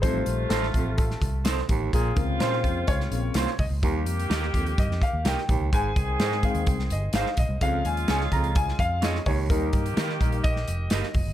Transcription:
<<
  \new Staff \with { instrumentName = "Grand piano" } { \time 4/4 \key ees \mixolydian \tempo 4 = 127 c''4 a'4 a'4 r4 | aes'8 bes'8 c''4 des''4. ees''8 | r2 ees''8 f''8 g''4 | aes''4. f''8 r8 ees''8 f''8 ees''8 |
f''8 aes''8 aes''8 bes''8 aes''8 f''8 ees''8 des''8 | bes'4. r8 ees''2 | }
  \new Staff \with { instrumentName = "Grand piano" } { \clef bass \time 4/4 \key ees \mixolydian <ees g a>4. r2 r8 | r8 <c des bes>2 <des bes c'>8 r4 | <ees g bes>4. r2 r8 | r4. <ees aes c'>8 r2 |
<f aes des'>4. r2 r8 | <g bes ees'>8 r4 <g bes ees'>8 r2 | }
  \new Staff \with { instrumentName = "Clean electric guitar" } { \time 4/4 \key ees \mixolydian r4 <c' ees' a' c''>8 r4. <c' ees' a' c''>8 r8 | r4 <bes des' f' c''>8 r4. <bes des' f' c''>8 r8 | r4 <ees' g' bes' ees''>8 r4. <ees' g' bes' ees''>8 r8 | r4 <ees' aes' c'' ees''>8 r4. <ees' aes' c'' ees''>8 r8 |
r4 <des' f' aes' des''>8 r4. <des' f' aes' des''>8 r8 | r4 <ees' g' bes' ees''>8 r4. <ees' g' bes' ees''>8 r8 | }
  \new Staff \with { instrumentName = "Horn section" } { \time 4/4 \key ees \mixolydian <c a f'>2.~ <c a f'>8 r8 | <des c' f'>2.~ <des c' f'>8 r8 | <ees bes g'>2.~ <ees bes g'>8 r8 | <ees c' aes'>2.~ <ees c' aes'>8 r8 |
<des aes f'>2.~ <des aes f'>8 r8 | <ees bes g'>2.~ <ees bes g'>8 r8 | }
  \new Staff \with { instrumentName = "Baritone saxophone" } { \clef bass \time 4/4 \key ees \mixolydian f,8 r4 f,8 r4. ees,8 | bes,8 r2. r8 | ees,8 r4 f,8 r4. ees,8 | aes,8 r2. r8 |
f,8 r4 f,8 r4. ees,8 | ees,8 r2. r8 | }
  \new Staff \with { instrumentName = "Fingered electric bass" } { \clef bass \time 4/4 \key ees \mixolydian a,,8 bes,,8 a,,8 a,,4 c,4 a,,8 | bes,,8 des,8 bes,8 f,8 des,8 bes,,8 c,16 r16 c,16 des,16 | ees,8 f,8 ees,8 ees,8 g,16 f,16 r16 ees,16 c,16 r16 bes,,16 des,16 | aes,,8 c,8 aes,8. ees,16 c,8 g,,8 aes,,16 r16 bes,,16 c,16 |
des,8 ees,8 des,8 des,4 f,4 des,8 | ees,8 g,8 ees8 bes,,8 bes,,8 f,,8 g,,16 r16 f,,16 g,,16 | }
  \new DrumStaff \with { instrumentName = "Drums" } \drummode { \time 4/4 <hh bd>8 hh8 <hh sn>16 sn16 <hh bd>8 <hh bd>16 sn16 <hh bd>8 <hh sn>16 sn16 <hh bd>8 | <hh bd>8 <hh bd>8 <hh sn>16 sn16 <hh bd>8 <hh bd>16 sn16 hh8 <hh sn>16 sn16 <hho bd>8 | <hh bd>8 hh16 hh16 <hh sn>16 sn16 <hh bd>16 hh16 <hh bd>16 sn16 <hh bd>8 <hh sn>16 sn16 <hh bd>8 | <hh bd>8 <hh bd>8 <hh sn>16 sn16 <hh bd>16 hh16 <hh bd>16 sn16 hh8 <hh sn>16 sn16 <hh bd>8 |
<hh bd>8 hh16 hh16 <hh sn>16 sn16 <hh bd>16 hh16 <hh bd>16 sn16 <hh bd>8 <hh sn>16 sn16 <hho bd>8 | <hh bd>8 <hh bd>16 hh16 <hh sn>16 sn16 <hh bd>16 hh16 <hh bd>16 sn16 hh8 <hh sn>16 sn16 <hho bd>8 | }
>>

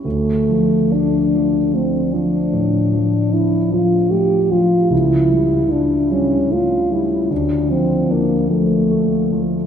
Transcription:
<<
  \new Staff \with { instrumentName = "French horn" } { \time 12/8 \key d \minor \tempo 4. = 50 a4 d'4 c'8 d'4. e'8 f'8 g'8 f'8 | e'4 d'8 cis'8 f'8 e'8 d'8 c'8 bes8 a4 r8 | }
  \new Staff \with { instrumentName = "Grand piano" } { \clef bass \time 12/8 \key d \minor d,8 f8 d'8 f8 a8 f8 a,8 f8 d'8 f8 a8 f8 | cis,8 g8 e'8 g8 a8 g8 d,8 f8 d'8 f8 a8 f8 | }
>>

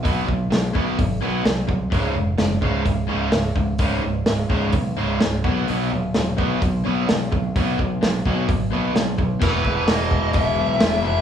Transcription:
<<
  \new Staff \with { instrumentName = "Lead electric guitar" } { \time 4/4 \key ces \lydian \tempo 4 = 128 r1 | r1 | r1 | r1 |
r1 | b'4 ees''4 e''4. e''8 | }
  \new Staff \with { instrumentName = "Distorted electric guitar" } { \clef bass \time 4/4 \key ces \lydian <ces ges ces'>8 <ces ges>8 <ces ges>8 <ces ges ces'>8 <ces ges>8 <ces ges ces'>8 <ces ges>8 <ces ges>8 | <des, aes, des>8 <des, aes,>8 <des, aes,>8 <des, aes, des>8 <des, aes,>8 <des, aes, des>8 <des, aes,>8 <des, aes,>8 | <des, aes, des>8 <des, aes,>8 <des, aes,>8 <des, aes, des>8 <des, aes,>8 <des, aes, des>8 <des, aes,>8 <ces ges ces'>8 | <ces ges ces'>8 <ces ges>8 <ces ges>8 <ces ges ces'>8 <ces ges>8 <ces ges ces'>8 <ces ges>8 <ces ges>8 |
<ces ges ces'>8 <ces ges>8 <ces ges>8 <ces ges ces'>8 <ces ges>8 <ces ges ces'>8 <ces ges>8 <ces ges>8 | <e, b, e>1 | }
  \new Staff \with { instrumentName = "Overdriven electric guitar" } { \clef bass \time 4/4 \key ces \lydian <ces ges ces'>8 <ces ges>8 <ces ges>8 <ces ges ces'>8 <ces ges>8 <ces ges ces'>8 <ces ges>8 <ces ges>8 | <des, aes, des>8 <des, aes,>8 <des, aes,>8 <des, aes, des>8 <des, aes,>8 <des, aes, des>8 <des, aes,>8 <des, aes,>8 | <des, aes, des>8 <des, aes,>8 <des, aes,>8 <des, aes, des>8 <des, aes,>8 <des, aes, des>8 <des, aes,>8 <ces ges ces'>8 | <ces ges ces'>8 <ces ges>8 <ces ges>8 <ces ges ces'>8 <ces ges>8 <ces ges ces'>8 <ces ges>8 <ces ges>8 |
<ces ges ces'>8 <ces ges>8 <ces ges>8 <ces ges ces'>8 <ces ges>8 <ces ges ces'>8 <ces ges>8 <ces ges>8 | <e, b, e gis b e'>2.~ <e, b, e gis b e'>8 <e, b, e gis b e'>8 | }
  \new Staff \with { instrumentName = "Fingered electric bass" } { \clef bass \time 4/4 \key ces \lydian ces,8 ces,8 ces,8 ces,8 aes,,8 ces,8 c,4 | des,,8 f,,8 ges,,8 des,,8 des,,8 des,,8 des,,8 des,,8 | des,,8 des,,8 des,,8 des,,8 ces,8 des,,8 des,,8 ces,8 | ces,8 ees,,8 ees,,8 ces,8 ces,8 ces,8 ces,8 ces,8 |
ces,8 ces,8 ces,8 ces,8 aes,,8 ces,8 ces,4 | e,,8 e,,8 e,,8 e,,8 e,,8 b,,8 e,,8 f,,8 | }
  \new DrumStaff \with { instrumentName = "Drums" } \drummode { \time 4/4 <hho bd>8 bd8 <hho sn>8 bd8 <hho bd>4 <hho sn>8 bd8 | <hho bd>4 <hho sn>8 bd8 <hho bd>4 <hho sn>8 bd8 | <hho bd>4 <hho sn>8 bd8 <hho bd>4 <hho sn>8 bd8 | hho4 <hho sn>8 bd8 <hho bd>4 <hho sn>8 bd8 |
<hho bd>8 bd8 <hho sn>8 bd8 <hho bd>4 <hho sn>8 bd8 | <cymc bd>8 bd8 <hho sn>8 bd8 <hho bd>4 <hho sn>4 | }
>>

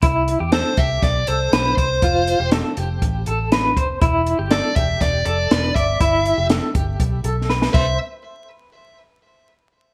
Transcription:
<<
  \new Staff \with { instrumentName = "Lead electric guitar" } { \time 4/4 \key c \major \tempo 4 = 121 r4 c''8 e''8 d''8 c''4 c''8~ | c''4 r2. | r4 d''8 e''8 d''8 d''4 e''8~ | e''4 r2 r8 e''8 |
r1 | }
  \new Staff \with { instrumentName = "Clean electric guitar" } { \time 4/4 \key c \major e'8. g'16 a'8 g'4 a'8 b'8 c''8 | f'8. g'16 a'8 g'4 a'8 b'8 c''8 | e'8. g'16 a'8 g'4 a'8 b'8 d''8 | e'8. g'16 a'8 g'4 a'8 b'8 c''8 |
r1 | }
  \new Staff \with { instrumentName = "Fingered electric bass" } { \clef bass \time 4/4 \key c \major c,8. e,8 r16 c,8 b,,8 c,8 b,,8 c,8 | f,,8. e,,8 r16 f,,8 a,,8 a,,4 f,,8 | e,,8. g,,8 r16 e,,8 e,,8 f,,8 e,,8 g,,8 | g,,8. f,,8 r16 g,,8 b,,8 b,,4 c,8 |
r1 | }
  \new DrumStaff \with { instrumentName = "Drums" } \drummode { \time 4/4 <hh bd>8 hh8 <hh sn>8 <hh bd>8 <hh bd sn>8 hh8 <hh sn>8 <hh bd>8 | <hh bd>8 hh8 <hh sn>8 hh8 <hh bd>8 hh8 <hh sn>8 <hh bd>8 | <hh bd>8 hh8 <hh sn>8 <hh bd>8 <hh bd sn>8 hh8 <hh sn>8 <hh bd>8 | <hh bd>8 hh8 <hh sn>8 <hh bd>8 <hh bd>8 hh8 sn16 sn16 <cymc bd>8 |
r4 r4 r4 r4 | }
>>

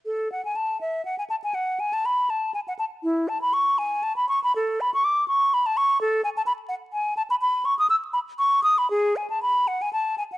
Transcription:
\new Staff \with { instrumentName = "Flute" } { \time 6/8 \key a \major \tempo 4. = 81 a'8 fis''16 gis''16 a''8 e''8 fis''16 gis''16 a''16 gis''16 | fis''8 gis''16 a''16 b''8 a''8 gis''16 fis''16 a''8 | e'8 a''16 b''16 cis'''8 gis''8 a''16 b''16 cis'''16 b''16 | a'8 b''16 cis'''16 d'''8 cis'''8 b''16 a''16 cis'''8 |
\key gis \phrygian a'8 gis''16 a''16 b''8 fis''8 gis''8 a''16 b''16 | b''8 cis'''16 dis'''16 e'''8 b''8 cis'''8 dis'''16 b''16 | gis'8 gis''16 a''16 b''8 fis''16 gis''16 a''8 gis''16 fis''16 | }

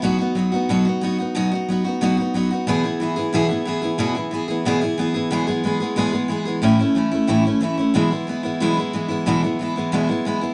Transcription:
\new Staff \with { instrumentName = "Steel-string acoustic guitar" } { \time 4/4 \key e \major \tempo 4 = 182 <b, fis b dis' fis'>8 <b dis' fis'>8 <fis b dis' fis'>8 <b dis' fis'>8 <b, fis b dis' fis'>8 <b dis' fis'>8 <fis b dis' fis'>8 <b dis' fis'>8 | <b, fis b dis' fis'>8 <b dis' fis'>8 <fis b dis' fis'>8 <b dis' fis'>8 <b, fis b dis' fis'>8 <b dis' fis'>8 <fis b dis' fis'>8 <b dis' fis'>8 | <e, b, e b e' gis'>8 <e b e' gis'>8 <e b e' gis'>8 <e b e' gis'>8 <e, b, e b e' gis'>8 <e b e' gis'>8 <e b e' gis'>8 <e b e' gis'>8 | <e, b, e b e' gis'>8 <e b e' gis'>8 <e b e' gis'>8 <e b e' gis'>8 <e, b, e b e' gis'>8 <e b e' gis'>8 <e b e' gis'>8 <e b e' gis'>8 |
<e, b, e gis b gis'>8 <e gis b gis'>8 <e gis b gis'>8 <e gis b gis'>8 <e, b, e gis b gis'>8 <e gis b gis'>8 <e gis b gis'>8 <e gis b gis'>8 | <a, e a cis' e'>8 <a cis' e'>8 <e a cis' e'>8 <a cis' e'>8 <a, e a cis' e'>8 <a cis' e'>8 <e a cis' e'>8 <a cis' e'>8 | <e, b, e gis b e'>8 <e gis b>8 <e gis b e'>8 <e gis b e'>8 <e, b, e gis b e'>8 <e gis b e'>8 <e gis b e'>8 <e gis b e'>8 | <e, b, e gis b e'>8 <e gis b e'>8 <e gis b e'>8 <e gis b e'>8 <e, b, e gis b e'>8 <e gis b e'>8 <e gis b e'>8 <e gis b e'>8 | }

